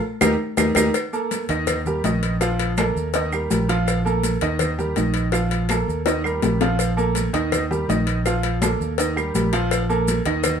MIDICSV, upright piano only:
0, 0, Header, 1, 2, 480
1, 0, Start_track
1, 0, Tempo, 365186
1, 1242, Time_signature, 4, 2, 24, 8
1, 13933, End_track
2, 0, Start_track
2, 0, Title_t, "Upright piano"
2, 0, Program_c, 0, 0
2, 280, Note_on_c, 0, 63, 102
2, 280, Note_on_c, 0, 67, 108
2, 280, Note_on_c, 0, 70, 102
2, 433, Note_off_c, 0, 63, 0
2, 434, Note_off_c, 0, 67, 0
2, 434, Note_off_c, 0, 70, 0
2, 753, Note_on_c, 0, 67, 87
2, 755, Note_on_c, 0, 63, 94
2, 757, Note_on_c, 0, 70, 89
2, 910, Note_off_c, 0, 67, 0
2, 911, Note_off_c, 0, 63, 0
2, 912, Note_off_c, 0, 70, 0
2, 996, Note_on_c, 0, 67, 106
2, 999, Note_on_c, 0, 70, 105
2, 1003, Note_on_c, 0, 63, 108
2, 1152, Note_off_c, 0, 67, 0
2, 1154, Note_off_c, 0, 70, 0
2, 1156, Note_off_c, 0, 63, 0
2, 1482, Note_on_c, 0, 58, 77
2, 1489, Note_on_c, 0, 69, 82
2, 1490, Note_on_c, 0, 70, 75
2, 1877, Note_off_c, 0, 58, 0
2, 1881, Note_off_c, 0, 69, 0
2, 1881, Note_off_c, 0, 70, 0
2, 1960, Note_on_c, 0, 51, 86
2, 1967, Note_on_c, 0, 63, 91
2, 1971, Note_on_c, 0, 75, 88
2, 2356, Note_off_c, 0, 51, 0
2, 2360, Note_off_c, 0, 63, 0
2, 2363, Note_off_c, 0, 75, 0
2, 2449, Note_on_c, 0, 55, 71
2, 2455, Note_on_c, 0, 70, 84
2, 2458, Note_on_c, 0, 67, 83
2, 2645, Note_off_c, 0, 55, 0
2, 2648, Note_off_c, 0, 70, 0
2, 2650, Note_off_c, 0, 67, 0
2, 2690, Note_on_c, 0, 51, 80
2, 2690, Note_on_c, 0, 63, 74
2, 2697, Note_on_c, 0, 75, 82
2, 3082, Note_off_c, 0, 51, 0
2, 3082, Note_off_c, 0, 63, 0
2, 3086, Note_off_c, 0, 75, 0
2, 3164, Note_on_c, 0, 53, 95
2, 3174, Note_on_c, 0, 65, 93
2, 3178, Note_on_c, 0, 77, 85
2, 3559, Note_off_c, 0, 53, 0
2, 3565, Note_off_c, 0, 65, 0
2, 3568, Note_off_c, 0, 77, 0
2, 3644, Note_on_c, 0, 58, 74
2, 3652, Note_on_c, 0, 69, 75
2, 3654, Note_on_c, 0, 70, 79
2, 4040, Note_off_c, 0, 58, 0
2, 4044, Note_off_c, 0, 69, 0
2, 4045, Note_off_c, 0, 70, 0
2, 4137, Note_on_c, 0, 51, 91
2, 4145, Note_on_c, 0, 63, 84
2, 4147, Note_on_c, 0, 75, 88
2, 4330, Note_off_c, 0, 51, 0
2, 4335, Note_off_c, 0, 63, 0
2, 4336, Note_off_c, 0, 75, 0
2, 4375, Note_on_c, 0, 67, 82
2, 4377, Note_on_c, 0, 55, 69
2, 4385, Note_on_c, 0, 70, 82
2, 4569, Note_off_c, 0, 67, 0
2, 4571, Note_off_c, 0, 55, 0
2, 4575, Note_off_c, 0, 70, 0
2, 4605, Note_on_c, 0, 67, 67
2, 4607, Note_on_c, 0, 55, 67
2, 4612, Note_on_c, 0, 70, 70
2, 4804, Note_off_c, 0, 55, 0
2, 4804, Note_off_c, 0, 67, 0
2, 4808, Note_off_c, 0, 70, 0
2, 4845, Note_on_c, 0, 53, 90
2, 4853, Note_on_c, 0, 65, 101
2, 4855, Note_on_c, 0, 77, 91
2, 5241, Note_off_c, 0, 53, 0
2, 5245, Note_off_c, 0, 65, 0
2, 5246, Note_off_c, 0, 77, 0
2, 5320, Note_on_c, 0, 58, 78
2, 5330, Note_on_c, 0, 69, 84
2, 5331, Note_on_c, 0, 70, 84
2, 5718, Note_off_c, 0, 58, 0
2, 5723, Note_off_c, 0, 69, 0
2, 5724, Note_off_c, 0, 70, 0
2, 5807, Note_on_c, 0, 51, 88
2, 5814, Note_on_c, 0, 63, 82
2, 5814, Note_on_c, 0, 75, 91
2, 6202, Note_off_c, 0, 51, 0
2, 6205, Note_off_c, 0, 75, 0
2, 6206, Note_off_c, 0, 63, 0
2, 6285, Note_on_c, 0, 55, 69
2, 6291, Note_on_c, 0, 67, 84
2, 6297, Note_on_c, 0, 70, 77
2, 6483, Note_off_c, 0, 55, 0
2, 6487, Note_off_c, 0, 67, 0
2, 6491, Note_off_c, 0, 70, 0
2, 6521, Note_on_c, 0, 51, 82
2, 6531, Note_on_c, 0, 63, 75
2, 6533, Note_on_c, 0, 75, 80
2, 6918, Note_off_c, 0, 51, 0
2, 6923, Note_off_c, 0, 63, 0
2, 6925, Note_off_c, 0, 75, 0
2, 7004, Note_on_c, 0, 65, 85
2, 7005, Note_on_c, 0, 53, 82
2, 7009, Note_on_c, 0, 77, 77
2, 7399, Note_off_c, 0, 65, 0
2, 7400, Note_off_c, 0, 53, 0
2, 7402, Note_off_c, 0, 77, 0
2, 7492, Note_on_c, 0, 58, 70
2, 7497, Note_on_c, 0, 70, 77
2, 7500, Note_on_c, 0, 69, 77
2, 7884, Note_off_c, 0, 58, 0
2, 7887, Note_off_c, 0, 70, 0
2, 7888, Note_off_c, 0, 69, 0
2, 7964, Note_on_c, 0, 51, 90
2, 7973, Note_on_c, 0, 63, 89
2, 7977, Note_on_c, 0, 75, 86
2, 8162, Note_off_c, 0, 51, 0
2, 8168, Note_off_c, 0, 63, 0
2, 8170, Note_off_c, 0, 75, 0
2, 8206, Note_on_c, 0, 55, 83
2, 8210, Note_on_c, 0, 67, 68
2, 8215, Note_on_c, 0, 70, 85
2, 8404, Note_off_c, 0, 55, 0
2, 8406, Note_off_c, 0, 67, 0
2, 8409, Note_off_c, 0, 70, 0
2, 8446, Note_on_c, 0, 55, 69
2, 8454, Note_on_c, 0, 67, 78
2, 8457, Note_on_c, 0, 70, 62
2, 8643, Note_off_c, 0, 55, 0
2, 8648, Note_off_c, 0, 67, 0
2, 8650, Note_off_c, 0, 70, 0
2, 8690, Note_on_c, 0, 53, 92
2, 8694, Note_on_c, 0, 65, 87
2, 8694, Note_on_c, 0, 77, 96
2, 9082, Note_off_c, 0, 53, 0
2, 9084, Note_off_c, 0, 65, 0
2, 9084, Note_off_c, 0, 77, 0
2, 9160, Note_on_c, 0, 69, 81
2, 9162, Note_on_c, 0, 58, 85
2, 9168, Note_on_c, 0, 70, 88
2, 9555, Note_off_c, 0, 69, 0
2, 9557, Note_off_c, 0, 58, 0
2, 9560, Note_off_c, 0, 70, 0
2, 9640, Note_on_c, 0, 51, 95
2, 9647, Note_on_c, 0, 75, 90
2, 9650, Note_on_c, 0, 63, 93
2, 10035, Note_off_c, 0, 51, 0
2, 10039, Note_off_c, 0, 75, 0
2, 10041, Note_off_c, 0, 63, 0
2, 10130, Note_on_c, 0, 55, 87
2, 10131, Note_on_c, 0, 67, 85
2, 10138, Note_on_c, 0, 70, 71
2, 10324, Note_off_c, 0, 55, 0
2, 10325, Note_off_c, 0, 67, 0
2, 10329, Note_off_c, 0, 70, 0
2, 10374, Note_on_c, 0, 51, 78
2, 10377, Note_on_c, 0, 63, 86
2, 10380, Note_on_c, 0, 75, 81
2, 10763, Note_off_c, 0, 51, 0
2, 10764, Note_off_c, 0, 63, 0
2, 10766, Note_off_c, 0, 75, 0
2, 10862, Note_on_c, 0, 53, 88
2, 10864, Note_on_c, 0, 65, 85
2, 10866, Note_on_c, 0, 77, 92
2, 11247, Note_off_c, 0, 53, 0
2, 11248, Note_off_c, 0, 65, 0
2, 11249, Note_off_c, 0, 77, 0
2, 11338, Note_on_c, 0, 58, 76
2, 11338, Note_on_c, 0, 69, 75
2, 11347, Note_on_c, 0, 70, 76
2, 11724, Note_off_c, 0, 58, 0
2, 11724, Note_off_c, 0, 69, 0
2, 11729, Note_off_c, 0, 70, 0
2, 11817, Note_on_c, 0, 51, 83
2, 11818, Note_on_c, 0, 63, 90
2, 11819, Note_on_c, 0, 75, 78
2, 12007, Note_off_c, 0, 51, 0
2, 12007, Note_off_c, 0, 63, 0
2, 12008, Note_off_c, 0, 75, 0
2, 12043, Note_on_c, 0, 55, 80
2, 12044, Note_on_c, 0, 67, 88
2, 12051, Note_on_c, 0, 70, 71
2, 12238, Note_off_c, 0, 55, 0
2, 12238, Note_off_c, 0, 67, 0
2, 12243, Note_off_c, 0, 70, 0
2, 12290, Note_on_c, 0, 55, 72
2, 12292, Note_on_c, 0, 67, 78
2, 12299, Note_on_c, 0, 70, 68
2, 12482, Note_off_c, 0, 55, 0
2, 12484, Note_off_c, 0, 67, 0
2, 12487, Note_off_c, 0, 70, 0
2, 12522, Note_on_c, 0, 53, 107
2, 12523, Note_on_c, 0, 65, 101
2, 12533, Note_on_c, 0, 77, 109
2, 12914, Note_off_c, 0, 53, 0
2, 12914, Note_off_c, 0, 65, 0
2, 12920, Note_off_c, 0, 77, 0
2, 13004, Note_on_c, 0, 58, 92
2, 13008, Note_on_c, 0, 69, 87
2, 13012, Note_on_c, 0, 70, 84
2, 13394, Note_off_c, 0, 58, 0
2, 13396, Note_off_c, 0, 69, 0
2, 13399, Note_off_c, 0, 70, 0
2, 13484, Note_on_c, 0, 51, 89
2, 13485, Note_on_c, 0, 63, 94
2, 13487, Note_on_c, 0, 75, 89
2, 13873, Note_off_c, 0, 51, 0
2, 13874, Note_off_c, 0, 63, 0
2, 13876, Note_off_c, 0, 75, 0
2, 13933, End_track
0, 0, End_of_file